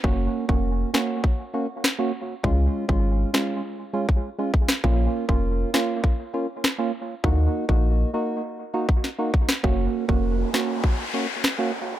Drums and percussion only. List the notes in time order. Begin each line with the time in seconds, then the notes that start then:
0.04 kick
0.49 kick
0.94 cross-stick, snare
1.24 kick
1.84 cross-stick, snare
2.44 kick
2.89 kick
3.34 cross-stick, snare
4.09 kick
4.54 kick
4.68 cross-stick, snare
4.84 kick
5.29 kick
5.74 cross-stick, snare
6.04 kick
6.64 cross-stick, snare
7.24 kick
7.69 kick
8.89 kick
9.04 snare
9.34 kick
9.49 cross-stick, snare
9.64 kick
10.09 kick
10.54 cross-stick, snare
10.84 kick
11.44 cross-stick, snare